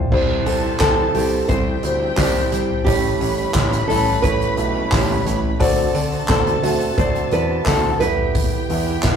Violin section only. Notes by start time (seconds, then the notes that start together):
0.12 A4 A5
1.49 G4 G5
2.87 B4 B5
5.61 A4 A5
8.01 G4 G5